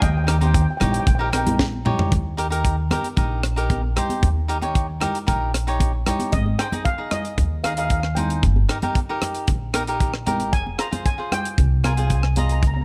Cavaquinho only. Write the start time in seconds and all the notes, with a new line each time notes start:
0.27 D#4 G4 A#4
0.41 D#4 G4 C5
0.80 D#4 G4 C#5
1.19 D#4 G4 A#4
1.33 D#4 G4 A#4
1.85 D#4 G4 C#5
2.37 D#4 G4 A#4
2.50 D#4 G4 A#4
2.91 D#4 G4 A#4
3.17 D#4 G4 A#4
3.56 D#4 G4 A#4
3.96 D#4 G4 C5
4.48 D#4 G4 A#4
4.61 D#4 G4 C#5
5.00 D#4 G4 A#4
5.27 D#4 G4 A#4
5.67 D#4 G4 C#5
6.06 D#4 G4 C#5
6.59 D#4 G#4 C5
6.72 D#4 G#4 D#5
6.98 D#4 G#4 D#5
7.64 D#4 G#4 D#5
7.77 D#4 G#4 D#5
8.17 D#4 G#4 C5
8.69 D#4 G4 A#4
8.83 D#4 G4 A#4
9.09 D#4 G4 A#4
9.74 D#4 G4 A#4
9.88 D#4 G4 A#4
10.26 D#4 G4 A#4
10.78 F4 G#4 C5
10.91 F4 G#4 C5
11.18 F4 G#4 C5
11.84 F4 G#4 A#4
11.97 F4 G#4 C5
12.37 F4 G#4 D#5